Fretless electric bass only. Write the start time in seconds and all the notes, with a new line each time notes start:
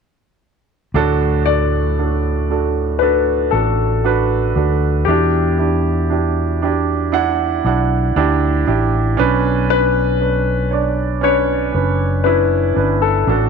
0.94 D2
3.52 A1
4.56 D2
5.07 E2
7.65 B1
8.16 D2
8.67 A1
9.20 B1
11.74 F#1
12.76 G1
13.27 A1